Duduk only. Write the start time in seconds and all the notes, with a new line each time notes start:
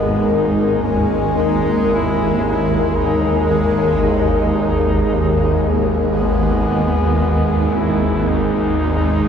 Already playing: B3
0.34 D#4
0.86 C#4
1.40 D#4
1.94 E4
2.44 E4
2.97 D#4
3.50 D#4
4.02 D#4
6.15 B3
7.74 E4
8.29 D#4